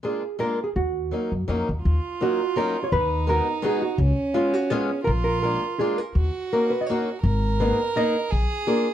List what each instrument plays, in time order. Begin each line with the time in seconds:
0.03 steel-string acoustic guitar G#3 A#3 D4 F4, hollow-body jazz guitar G#4
0.39 steel-string acoustic guitar G#3 A#3 D4 F4, hollow-body jazz guitar A#4
0.64 hollow-body jazz guitar G#4
0.76 upright bass D#2, hollow-body jazz guitar F#4
1.11 steel-string acoustic guitar F#3 A#3 C#4 D#4
1.32 upright bass F#2
1.48 upright bass F2, steel-string acoustic guitar F#3 A#3 C#4 D#4
1.69 upright bass D#2
1.82 upright bass D#2, violin F4
2.21 steel-string acoustic guitar F#3 A#3 C#4 D#4, hollow-body jazz guitar F#4
2.56 steel-string acoustic guitar F#3 A#3 C#4 D#4, hollow-body jazz guitar A#4
2.84 hollow-body jazz guitar C#5
2.92 upright bass D#2, violin D#4, hollow-body jazz guitar B4
3.27 steel-string acoustic guitar G#3 B3 D#4 F#4, hollow-body jazz guitar A#4
3.62 steel-string acoustic guitar G#3 B3 D#4 F#4, hollow-body jazz guitar G#4
3.82 hollow-body jazz guitar F#4
3.98 upright bass C#2, violin C#4
4.34 steel-string acoustic guitar G#3 B3 C#4 F4, hollow-body jazz guitar F4
4.54 hollow-body jazz guitar F#4
4.70 steel-string acoustic guitar G#3 B3 C#4 F4, hollow-body jazz guitar G#4
5.04 upright bass A#1, violin F4, hollow-body jazz guitar A#4
5.24 hollow-body jazz guitar A#4
5.43 steel-string acoustic guitar G#3 A#3 D4 F4, hollow-body jazz guitar A#4
5.79 steel-string acoustic guitar G#3 A#3 D4 F4, hollow-body jazz guitar G#4
5.98 hollow-body jazz guitar A#4
6.15 upright bass D#2, violin F#4
6.53 steel-string acoustic guitar A#3 C#4 D#4 F#4, hollow-body jazz guitar A#4
6.70 hollow-body jazz guitar B4
6.81 hollow-body jazz guitar D#5
6.86 steel-string acoustic guitar A#3 C#4, hollow-body jazz guitar C#5
6.91 steel-string acoustic guitar D#4 F#4
7.22 upright bass G#1, violin A#4
7.60 steel-string acoustic guitar A#3 B3 D#4 G#4, hollow-body jazz guitar B4
7.96 steel-string acoustic guitar A#3 B3 D#4 G#4, hollow-body jazz guitar D#5
8.30 upright bass A#1, violin G#4
8.67 steel-string acoustic guitar A#3 D4 F4 G#4, hollow-body jazz guitar G#4